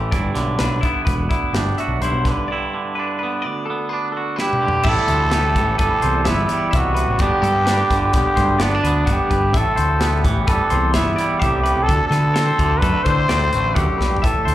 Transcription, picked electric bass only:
0, 0, Header, 1, 2, 480
1, 0, Start_track
1, 0, Key_signature, 1, "major"
1, 0, Tempo, 470219
1, 136, Time_signature, 5, 2, 24, 8
1, 14851, End_track
2, 0, Start_track
2, 0, Title_t, "Picked electric bass"
2, 0, Program_c, 0, 34
2, 0, Note_on_c, 0, 33, 78
2, 125, Note_on_c, 0, 31, 88
2, 140, Note_off_c, 0, 33, 0
2, 328, Note_off_c, 0, 31, 0
2, 362, Note_on_c, 0, 35, 75
2, 567, Note_off_c, 0, 35, 0
2, 617, Note_on_c, 0, 35, 77
2, 816, Note_off_c, 0, 35, 0
2, 1089, Note_on_c, 0, 28, 92
2, 1292, Note_off_c, 0, 28, 0
2, 1561, Note_on_c, 0, 31, 86
2, 1768, Note_off_c, 0, 31, 0
2, 1918, Note_on_c, 0, 35, 67
2, 2028, Note_off_c, 0, 35, 0
2, 2050, Note_on_c, 0, 35, 90
2, 2152, Note_off_c, 0, 35, 0
2, 2159, Note_on_c, 0, 35, 69
2, 2368, Note_off_c, 0, 35, 0
2, 4949, Note_on_c, 0, 33, 101
2, 5048, Note_off_c, 0, 33, 0
2, 5181, Note_on_c, 0, 38, 81
2, 5666, Note_on_c, 0, 33, 89
2, 5681, Note_off_c, 0, 38, 0
2, 5865, Note_off_c, 0, 33, 0
2, 5913, Note_on_c, 0, 31, 89
2, 6010, Note_off_c, 0, 31, 0
2, 6158, Note_on_c, 0, 36, 83
2, 6395, Note_on_c, 0, 31, 95
2, 6410, Note_off_c, 0, 36, 0
2, 6590, Note_off_c, 0, 31, 0
2, 6874, Note_on_c, 0, 36, 92
2, 7168, Note_off_c, 0, 36, 0
2, 7222, Note_on_c, 0, 33, 74
2, 7323, Note_off_c, 0, 33, 0
2, 7349, Note_on_c, 0, 31, 103
2, 7447, Note_off_c, 0, 31, 0
2, 7579, Note_on_c, 0, 43, 95
2, 7977, Note_off_c, 0, 43, 0
2, 8066, Note_on_c, 0, 31, 96
2, 8263, Note_off_c, 0, 31, 0
2, 8303, Note_on_c, 0, 35, 82
2, 8403, Note_off_c, 0, 35, 0
2, 8543, Note_on_c, 0, 43, 79
2, 8741, Note_off_c, 0, 43, 0
2, 8774, Note_on_c, 0, 31, 90
2, 8976, Note_off_c, 0, 31, 0
2, 9021, Note_on_c, 0, 38, 75
2, 9220, Note_off_c, 0, 38, 0
2, 9261, Note_on_c, 0, 31, 92
2, 9361, Note_off_c, 0, 31, 0
2, 9503, Note_on_c, 0, 31, 84
2, 9734, Note_off_c, 0, 31, 0
2, 9734, Note_on_c, 0, 33, 104
2, 9836, Note_off_c, 0, 33, 0
2, 9985, Note_on_c, 0, 38, 83
2, 10454, Note_on_c, 0, 33, 91
2, 10469, Note_off_c, 0, 38, 0
2, 10655, Note_off_c, 0, 33, 0
2, 10696, Note_on_c, 0, 31, 92
2, 10797, Note_off_c, 0, 31, 0
2, 10940, Note_on_c, 0, 36, 86
2, 11182, Note_on_c, 0, 31, 93
2, 11197, Note_off_c, 0, 36, 0
2, 11379, Note_off_c, 0, 31, 0
2, 11659, Note_on_c, 0, 36, 89
2, 11956, Note_off_c, 0, 36, 0
2, 12008, Note_on_c, 0, 36, 80
2, 12112, Note_off_c, 0, 36, 0
2, 12127, Note_on_c, 0, 38, 102
2, 12231, Note_off_c, 0, 38, 0
2, 12358, Note_on_c, 0, 50, 93
2, 12762, Note_off_c, 0, 50, 0
2, 12850, Note_on_c, 0, 38, 89
2, 13052, Note_off_c, 0, 38, 0
2, 13090, Note_on_c, 0, 42, 90
2, 13192, Note_off_c, 0, 42, 0
2, 13327, Note_on_c, 0, 50, 80
2, 13530, Note_off_c, 0, 50, 0
2, 13566, Note_on_c, 0, 38, 91
2, 13769, Note_off_c, 0, 38, 0
2, 13817, Note_on_c, 0, 33, 76
2, 14015, Note_off_c, 0, 33, 0
2, 14044, Note_on_c, 0, 38, 89
2, 14149, Note_off_c, 0, 38, 0
2, 14296, Note_on_c, 0, 35, 79
2, 14536, Note_off_c, 0, 35, 0
2, 14536, Note_on_c, 0, 33, 89
2, 14636, Note_off_c, 0, 33, 0
2, 14766, Note_on_c, 0, 38, 81
2, 14851, Note_off_c, 0, 38, 0
2, 14851, End_track
0, 0, End_of_file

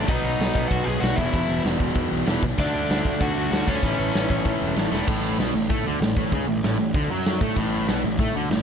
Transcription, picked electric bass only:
0, 0, Header, 1, 2, 480
1, 0, Start_track
1, 0, Key_signature, 3, "major"
1, 0, Tempo, 311365
1, 140, Time_signature, 4, 2, 24, 8
1, 13289, End_track
2, 0, Start_track
2, 0, Title_t, "Picked electric bass"
2, 0, Program_c, 0, 34
2, 127, Note_on_c, 0, 35, 104
2, 280, Note_off_c, 0, 35, 0
2, 368, Note_on_c, 0, 35, 95
2, 521, Note_off_c, 0, 35, 0
2, 607, Note_on_c, 0, 35, 90
2, 760, Note_off_c, 0, 35, 0
2, 853, Note_on_c, 0, 35, 100
2, 1004, Note_off_c, 0, 35, 0
2, 1090, Note_on_c, 0, 35, 87
2, 1243, Note_off_c, 0, 35, 0
2, 1336, Note_on_c, 0, 35, 93
2, 1487, Note_off_c, 0, 35, 0
2, 1577, Note_on_c, 0, 35, 99
2, 1728, Note_off_c, 0, 35, 0
2, 1814, Note_on_c, 0, 28, 92
2, 1966, Note_off_c, 0, 28, 0
2, 2060, Note_on_c, 0, 28, 111
2, 2210, Note_off_c, 0, 28, 0
2, 2304, Note_on_c, 0, 28, 103
2, 2453, Note_off_c, 0, 28, 0
2, 2544, Note_on_c, 0, 28, 84
2, 2693, Note_off_c, 0, 28, 0
2, 2778, Note_on_c, 0, 28, 94
2, 2929, Note_off_c, 0, 28, 0
2, 3020, Note_on_c, 0, 40, 94
2, 3170, Note_off_c, 0, 40, 0
2, 3267, Note_on_c, 0, 35, 86
2, 3415, Note_off_c, 0, 35, 0
2, 3512, Note_on_c, 0, 28, 94
2, 3659, Note_off_c, 0, 28, 0
2, 3743, Note_on_c, 0, 35, 85
2, 3893, Note_off_c, 0, 35, 0
2, 3983, Note_on_c, 0, 38, 108
2, 4133, Note_off_c, 0, 38, 0
2, 4230, Note_on_c, 0, 38, 96
2, 4377, Note_off_c, 0, 38, 0
2, 4472, Note_on_c, 0, 38, 95
2, 4619, Note_off_c, 0, 38, 0
2, 4707, Note_on_c, 0, 38, 103
2, 4856, Note_off_c, 0, 38, 0
2, 4950, Note_on_c, 0, 38, 101
2, 5098, Note_off_c, 0, 38, 0
2, 5191, Note_on_c, 0, 38, 83
2, 5339, Note_off_c, 0, 38, 0
2, 5430, Note_on_c, 0, 38, 96
2, 5578, Note_off_c, 0, 38, 0
2, 5665, Note_on_c, 0, 38, 90
2, 5814, Note_off_c, 0, 38, 0
2, 5900, Note_on_c, 0, 33, 109
2, 6051, Note_off_c, 0, 33, 0
2, 6162, Note_on_c, 0, 33, 104
2, 6306, Note_off_c, 0, 33, 0
2, 6400, Note_on_c, 0, 33, 87
2, 6545, Note_off_c, 0, 33, 0
2, 6632, Note_on_c, 0, 33, 90
2, 6779, Note_off_c, 0, 33, 0
2, 6872, Note_on_c, 0, 45, 103
2, 7019, Note_off_c, 0, 45, 0
2, 7117, Note_on_c, 0, 28, 85
2, 7263, Note_off_c, 0, 28, 0
2, 7343, Note_on_c, 0, 33, 91
2, 7493, Note_off_c, 0, 33, 0
2, 7586, Note_on_c, 0, 28, 83
2, 7735, Note_off_c, 0, 28, 0
2, 7829, Note_on_c, 0, 33, 95
2, 8274, Note_off_c, 0, 33, 0
2, 8295, Note_on_c, 0, 35, 89
2, 8524, Note_off_c, 0, 35, 0
2, 8537, Note_on_c, 0, 33, 82
2, 8765, Note_off_c, 0, 33, 0
2, 8794, Note_on_c, 0, 45, 98
2, 9013, Note_off_c, 0, 45, 0
2, 9037, Note_on_c, 0, 38, 92
2, 9255, Note_off_c, 0, 38, 0
2, 9268, Note_on_c, 0, 33, 92
2, 9490, Note_off_c, 0, 33, 0
2, 9507, Note_on_c, 0, 33, 89
2, 9730, Note_off_c, 0, 33, 0
2, 9752, Note_on_c, 0, 37, 106
2, 9972, Note_off_c, 0, 37, 0
2, 9982, Note_on_c, 0, 33, 90
2, 10207, Note_off_c, 0, 33, 0
2, 10233, Note_on_c, 0, 33, 89
2, 10453, Note_off_c, 0, 33, 0
2, 10473, Note_on_c, 0, 33, 86
2, 10693, Note_off_c, 0, 33, 0
2, 10703, Note_on_c, 0, 38, 99
2, 10927, Note_off_c, 0, 38, 0
2, 10954, Note_on_c, 0, 42, 96
2, 11396, Note_off_c, 0, 42, 0
2, 11423, Note_on_c, 0, 45, 90
2, 11647, Note_off_c, 0, 45, 0
2, 11665, Note_on_c, 0, 33, 103
2, 12111, Note_off_c, 0, 33, 0
2, 12161, Note_on_c, 0, 35, 93
2, 12376, Note_off_c, 0, 35, 0
2, 12395, Note_on_c, 0, 33, 85
2, 12613, Note_off_c, 0, 33, 0
2, 12624, Note_on_c, 0, 45, 101
2, 12847, Note_off_c, 0, 45, 0
2, 12868, Note_on_c, 0, 38, 93
2, 13089, Note_off_c, 0, 38, 0
2, 13111, Note_on_c, 0, 33, 88
2, 13289, Note_off_c, 0, 33, 0
2, 13289, End_track
0, 0, End_of_file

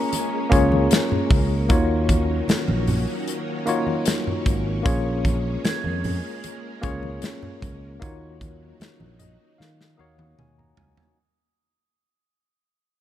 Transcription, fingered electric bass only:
0, 0, Header, 1, 3, 480
1, 0, Start_track
1, 0, Tempo, 788851
1, 1034, Time_signature, 4, 2, 24, 8
1, 7912, End_track
2, 0, Start_track
2, 0, Title_t, "Fingered electric bass"
2, 0, Program_c, 0, 33
2, 317, Note_on_c, 0, 37, 90
2, 528, Note_off_c, 0, 37, 0
2, 796, Note_on_c, 0, 37, 90
2, 1035, Note_off_c, 0, 37, 0
2, 1035, Note_on_c, 0, 39, 93
2, 1460, Note_off_c, 0, 39, 0
2, 1639, Note_on_c, 0, 34, 86
2, 1850, Note_off_c, 0, 34, 0
2, 2716, Note_on_c, 0, 32, 99
2, 2928, Note_off_c, 0, 32, 0
2, 2957, Note_on_c, 0, 34, 97
2, 3381, Note_off_c, 0, 34, 0
2, 3560, Note_on_c, 0, 41, 89
2, 3770, Note_off_c, 0, 41, 0
2, 4160, Note_on_c, 0, 37, 91
2, 4370, Note_off_c, 0, 37, 0
2, 4640, Note_on_c, 0, 37, 97
2, 4850, Note_off_c, 0, 37, 0
2, 4881, Note_on_c, 0, 39, 100
2, 5304, Note_off_c, 0, 39, 0
2, 5482, Note_on_c, 0, 34, 91
2, 5692, Note_off_c, 0, 34, 0
2, 5843, Note_on_c, 0, 51, 102
2, 6052, Note_off_c, 0, 51, 0
2, 6079, Note_on_c, 0, 39, 84
2, 6290, Note_off_c, 0, 39, 0
2, 6320, Note_on_c, 0, 39, 87
2, 6531, Note_off_c, 0, 39, 0
2, 6556, Note_on_c, 0, 37, 79
2, 6662, Note_off_c, 0, 37, 0
2, 7912, End_track
3, 0, Start_track
3, 0, Title_t, "Muted fingered electric bass strokes"
3, 1521, Note_on_c, 9, 29, 48
3, 1581, Note_off_c, 9, 29, 0
3, 3441, Note_on_c, 9, 29, 42
3, 3501, Note_off_c, 9, 29, 0
3, 5363, Note_on_c, 9, 29, 42
3, 5424, Note_off_c, 9, 29, 0
3, 7912, End_track
0, 0, End_of_file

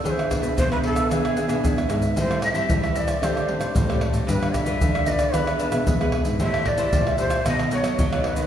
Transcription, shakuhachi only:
0, 0, Header, 1, 2, 480
1, 0, Start_track
1, 0, Key_signature, 0, "minor"
1, 0, Tempo, 529568
1, 44, Time_signature, 4, 2, 24, 8
1, 7675, End_track
2, 0, Start_track
2, 0, Title_t, "Shakuhachi"
2, 0, Program_c, 0, 77
2, 43, Note_on_c, 0, 73, 75
2, 86, Note_on_c, 0, 72, 82
2, 95, Note_off_c, 0, 73, 0
2, 266, Note_off_c, 0, 72, 0
2, 519, Note_on_c, 0, 72, 96
2, 632, Note_off_c, 0, 72, 0
2, 649, Note_on_c, 0, 71, 96
2, 701, Note_off_c, 0, 71, 0
2, 755, Note_on_c, 0, 69, 92
2, 1002, Note_on_c, 0, 68, 82
2, 1015, Note_off_c, 0, 69, 0
2, 1722, Note_off_c, 0, 68, 0
2, 1968, Note_on_c, 0, 72, 93
2, 2186, Note_off_c, 0, 72, 0
2, 2191, Note_on_c, 0, 76, 96
2, 2682, Note_on_c, 0, 74, 90
2, 2696, Note_off_c, 0, 76, 0
2, 2929, Note_on_c, 0, 72, 84
2, 2943, Note_off_c, 0, 74, 0
2, 3645, Note_off_c, 0, 72, 0
2, 3884, Note_on_c, 0, 71, 89
2, 4120, Note_on_c, 0, 76, 99
2, 4134, Note_off_c, 0, 71, 0
2, 4591, Note_on_c, 0, 75, 83
2, 4605, Note_off_c, 0, 76, 0
2, 4631, Note_on_c, 0, 74, 90
2, 4640, Note_off_c, 0, 75, 0
2, 4839, Note_on_c, 0, 71, 84
2, 4853, Note_off_c, 0, 74, 0
2, 5560, Note_off_c, 0, 71, 0
2, 5806, Note_on_c, 0, 76, 101
2, 6042, Note_on_c, 0, 74, 100
2, 6055, Note_off_c, 0, 76, 0
2, 6513, Note_off_c, 0, 74, 0
2, 6519, Note_on_c, 0, 72, 101
2, 6743, Note_off_c, 0, 72, 0
2, 6766, Note_on_c, 0, 75, 103
2, 6987, Note_off_c, 0, 75, 0
2, 7003, Note_on_c, 0, 73, 88
2, 7478, Note_on_c, 0, 71, 81
2, 7491, Note_off_c, 0, 73, 0
2, 7675, Note_off_c, 0, 71, 0
2, 7675, End_track
0, 0, End_of_file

